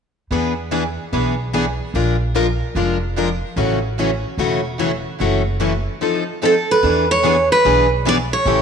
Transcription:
0.31 E2 E3 B3 D4 G#4 B4
0.71 E3 B3 D4 G#4 B4
1.12 B1 E3 B3 D4 G#4 B4
1.53 E3 B3 D4 G#4 B4
1.94 A#1 F3 G#3 D4 F4 A#4
2.35 F3 G#3 D4 F4 A#4
2.75 F1 F3 G#3 D4 F4 A#4
3.16 F3 G#3 D4 F4 A#4
3.56 A1 C#3 E3 F#3 A3 C#4 E4 F#4
3.98 C#3 E3 F#3 A3 C#4 E4 F#4
4.38 E1 C#3 E3 F#3 A3 C#4 E4 F#4
4.78 C#3 E3 F#3 A3 C#4 E4 F#4
5.19 F#1 C#3 E3 F#3 A3 C#4 E4 F#4 A4
5.60 C#3 E3 F#3 A3 C#4 E4 F#4 A4
6.01 F3 C4 D#4 A4
6.42 F3 C4 D#4 A4
6.71 B4
6.83 E2 E3 B3 D4 G#4 B4
7.11 C#5
7.23 E3 B3 D4 G#4 B4
7.52 B4
7.65 B1 E3 B3 D4 G#4 B4
8.05 E3 B3 D4 G#4 B4 D5
8.33 C#5
8.45 A1 C#3 E3 G3 A3 C#4 E4 G4 A4

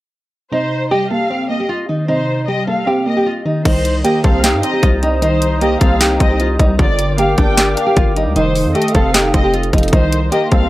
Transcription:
0.52 C3 D#4 C5
0.91 G3 G4 D#5
1.10 A#3 A4 F5
1.30 C4 G4
1.50 A#3 D#5
1.60 G4
1.69 F4
1.89 D#3 D#4
2.08 C3 D#4 C5
2.48 G3 G4 D#5
2.67 A#3 A4 F5
2.87 C4 G4
3.06 A#3 D#5
3.17 G4
3.26 F4
3.45 D#3 D#4
3.65 C2 D#3 D#4 C5 A#5 D#6, kick, closed hi-hat, crash
3.85 closed hi-hat
4.04 A#3 G4 D#5, closed hi-hat
4.24 C2 C4 A4 F5, kick, closed hi-hat
4.44 D#4 G4, snare, clap, closed hi-hat
4.54 G2
4.63 C4 D#5, closed hi-hat
4.73 G4
4.83 C2 F4, kick, closed hi-hat
5.03 G3 D#4, closed hi-hat
5.22 D#3 D#4 C5, closed hi-hat
5.42 closed hi-hat
5.61 A#3 G4 D#5, closed hi-hat
5.81 C2 C4 A4 F5, kick, closed hi-hat
6.01 D#4 G4, snare, clap, closed hi-hat
6.20 C2 C4 D#5, kick, closed hi-hat
6.30 G4
6.40 F4, closed hi-hat
6.59 C2 G3 D#4, kick, closed hi-hat
6.79 G1 D3 F4 A#4 D5 G5 D6, kick, closed hi-hat
6.99 closed hi-hat
7.18 A#3 G4 F5, closed hi-hat
7.38 G1 D4 A4 G5, kick, closed hi-hat
7.57 G4 D5, snare, clap, closed hi-hat
7.77 D4 F5, closed hi-hat
7.87 G4
7.96 G1 F4, kick, closed hi-hat
8.16 G3 D#4, closed hi-hat
8.26 D2
8.36 F1 D#3 D#4 A4 C5 F5 D#6, closed hi-hat
8.56 open hi-hat
8.65 F2
8.75 A3 G4 D#5, closed hi-hat
8.82 closed hi-hat
8.88 closed hi-hat
8.95 F1 C4 A4 F5, kick, closed hi-hat
9.14 D#4 G4, snare, clap, closed hi-hat
9.34 F1 C4 D#5, kick, closed hi-hat
9.44 G4
9.54 F4, closed hi-hat
9.63 closed hi-hat
9.73 F1 F3 D#4, kick, closed hi-hat
9.78 closed hi-hat
9.83 closed hi-hat
9.88 closed hi-hat
9.92 C2 D#3 D#4 A#4 C5 D#5 C6, kick, closed hi-hat
10.12 closed hi-hat
10.32 A#3 G4 D#5, closed hi-hat
10.52 C2 C4 A4 F5, kick, closed hi-hat

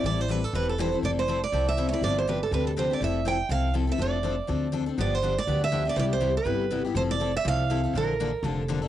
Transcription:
0.04 A1 E3 G3 C4 E4 A4 D5
0.21 C5
0.28 E3 G3 C4 E4 A4 B4
0.44 A4
0.53 E1 E3 G3 C4 E4 A4 B4
0.69 A4
0.78 E3 G3 C4 E4 A4 C5
0.92 C4 E4 A4
1.03 F1 F3 C4 E4 A4 D5
1.19 C5
1.28 F3 C4 E4 A4
1.44 D5
1.52 C2 F3 C4 E4 A4
1.69 E5
1.77 F3 C4 E4 A4
1.89 E4 A4 C#5
1.93 C4 D5
2.01 G1 C3 F3 C4 D4 G4 D5
2.18 C5
2.27 C3 F3 C4 D4 G4 B4
2.43 A4
2.51 D2 C3 F3 C4 D4 G4 B4
2.67 A4
2.77 C3 F3 C4 D4 G4 C5
2.90 C4 D4 G4 D5
3.00 F1 F3 C4 E4 A4 E5
3.25 F3 C4 E4 A4 G5
3.49 C2 F3 C4 E4 A4 F5
3.74 F3 C4 E4 A4
3.87 C4 E4 A4
3.91 E5
3.98 F1 F3 C4 D4 A4 D5
4.23 F3 C4 D4 A4
4.47 D2 F3 C4 D4 A4
4.72 F3 C4 D4 A4
4.86 C4 D4 A4
4.98 G1 D3 F3 B3 D4 G4 D5
5.15 C5
5.22 D3 F3 B3 D4 G4
5.38 D5
5.47 D2 D3 F3 B3 D4 G4
5.64 E5
5.72 D3 F3 B3 D4 G4
5.85 B3 D4 G4 D5
5.96 C2 C3 G3 B3 E4 G4 C5 D5
6.13 C5
6.21 C3 G3 B3 E4 G4
6.37 B4
6.45 G1 C3 G3 B3 E4 G4
6.71 C3 G3 B3 E4 G4
6.85 B3 E4 G4
6.95 F1 F3 C4 E4 A4 C5
7.11 D5
7.20 F3 C4 E4 A4
7.37 E5
7.45 C2 F3 C4 E4 A4 F5
7.70 F3 C4 E4 A4
7.84 C4 E4 A4
7.93 A#1 D3 F3 A#3 D4 A4
7.97 A#4
8.20 D3 F3 A#3 D4 A4
8.43 F1 D3 F3 A#3 D4 A4
8.68 D3 F3 A#3 D4 A4
8.82 A#3 D4 A4

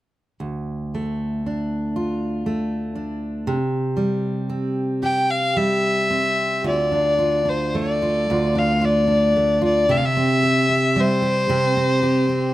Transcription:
0.40 D2
0.95 A3
1.46 D4
1.96 F4
2.46 A3
2.95 D4
3.47 C3
3.97 G3
4.49 C4
5.03 G4 G5
5.30 F5
5.56 G3 E5
6.10 C4
6.64 D2 F4 D5
6.92 D4
7.19 F4
7.45 D4 C5
7.75 A3 D5
8.02 F4
8.30 D2 F4
8.55 D4 F5
8.82 F4 D5
9.08 D4
9.36 A3
9.61 F4 D5
9.89 C3 G4 E5
9.97 F5
10.05 E5
10.17 C4
10.43 G4
10.69 C4
10.96 G3 C5
11.22 G4
11.49 C3 G4
11.77 C4
12.03 G4
12.29 C4

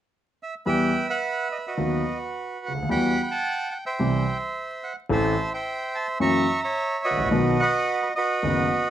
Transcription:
0.43 E5
0.66 E2 E3 G3 B3 G4 B4 E5 G5
1.09 B4 F#5
1.52 D#5
1.67 F#4 B4 D#5
1.77 D#2 D#3 F#3 B3 F#4
2.66 C#2 F#5
2.75 D2
2.83 D#2
2.89 E2 E3 G3 B3 F#4 F#5 G5 B5
3.23 B5
3.31 F#5 A5
3.71 F#5
3.86 C5 E5 G5
3.99 C2 C3 E3 G3 C4 G4
4.83 F#5
5.09 A1 A2 E3 A3 C4 A4 C5 E5 A5
5.54 C5 E5 G5
5.95 A5
6.20 F#2 E3 F#3 A#3 C#4 F#4 E5 A#5 C#6
6.63 C#5 E5 A#5
7.04 F#4 B4 D#5
7.11 G#1
7.17 A1
7.25 A#1
7.31 B1 B2 D#3 F#3 B3 F#4
7.60 B4 D#5 F#5
8.03 B4
8.15 F#4 B4 D#5
8.43 F#1 F#2 D#3 F#3 B3 F#4

